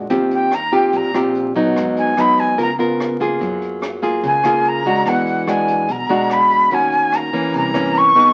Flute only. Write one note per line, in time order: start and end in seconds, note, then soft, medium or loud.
0.34 0.56 G5 medium
0.55 0.74 A#5 loud
0.75 0.98 G5 medium
0.97 1.16 A#5 loud
1.99 2.22 G#5 medium
2.20 2.41 B5 loud
2.40 2.59 G#5 medium
2.62 2.73 A#5 medium
4.26 4.70 G#5 medium
4.69 5.10 A#5 loud
5.09 5.51 F#5 medium
5.50 5.93 G#5 medium
5.91 6.34 A#5 medium
6.33 6.76 B5 medium
6.74 7.17 G#5 medium
7.16 7.57 A#5 medium
7.57 7.99 A#5 medium
7.98 8.33 C#6 loud